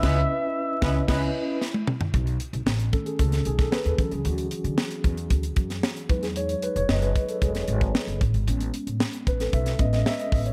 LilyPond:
<<
  \new Staff \with { instrumentName = "Analog synth lead" } { \time 4/4 \key b \mixolydian \tempo 4 = 114 e''2. r4 | r1 | r1 | r1 |
r1 | }
  \new Staff \with { instrumentName = "Tine electric piano" } { \time 4/4 \key b \mixolydian <cis' e' b' dis''>8 r4 <cis' e' b' dis''>8 <cis' e' b' dis''>8 r4. | r4. a'16 gis'16 a'8 gis'16 a'16 b'16 a'8 gis'16 | fis'4. r2 b'16 gis'16 | cis''8 b'16 cis''16 dis''16 b'8 a'16 gis'4. r8 |
r4. b'16 a'16 e''8 dis''16 dis''16 e''16 dis''8 cis''16 | }
  \new Staff \with { instrumentName = "Tine electric piano" } { \time 4/4 \key b \mixolydian r1 | r4. <dis a cis'>2 <e fis cis'>8~ | <e fis cis'>2.~ <e fis cis'>8 <fis gis dis'>8~ | <fis gis dis'>2.~ <fis gis dis'>8 r8 |
<gis b cis'>8 r2 <gis b cis'>8 r4 | }
  \new Staff \with { instrumentName = "Horn section" } { \time 4/4 \key b \mixolydian <gis b e' b'>8 r4 <gis b e' b'>8 <gis b e' b'>8 r4. | r1 | r1 | r1 |
r1 | }
  \new Staff \with { instrumentName = "Upright bass" } { \clef bass \time 4/4 \key b \mixolydian cis,8 r4 cis,8 cis,8 r4. | b,,8 r16 b,,16 a,,8 r8 cis,8 b,,8 r16 dis,16 d,16 cis,16 | d,8 r16 d16 r8 e,8 d,8 fis,8 r8 e,8~ | e,8 r16 e,,16 fis,,8 r8 e,,8 gis,,8 r16 fis,,16 a,,16 gis,,16 |
a,,8 r16 a,16 r8 a,,8 b,,8 a,,8 r8 a,,8 | }
  \new DrumStaff \with { instrumentName = "Drums" } \drummode { \time 4/4 <cymc bd sn>4 r8 <bd sn>8 <cymc bd sn>4 sn16 tommh16 toml16 tomfh16 | <hh bd>16 hh16 hh16 hh16 sn16 hh16 <hh bd>16 hh16 <hh bd>16 <hh sn>16 hh16 <hh bd sn>16 sn16 hh16 <hh bd>16 hh16 | hh16 hh16 hh16 hh16 sn16 hh16 <hh bd>16 hh16 <hh bd>16 hh16 <hh bd>16 <hh sn>16 sn16 hh16 <hh bd>16 <hh sn>16 | hh16 hh16 hh16 hh16 sn16 hh16 <hh bd>16 hh16 <hh bd>16 <hh sn>16 hh16 <hh bd>16 sn16 hh16 <hh bd>16 hh16 |
hh16 hh16 hh16 hh16 sn16 hh16 <hh bd>16 <hh sn>16 <hh bd>16 <hh sn>16 <hh bd>16 <hh sn>16 sn16 hh16 <hho bd>16 hh16 | }
>>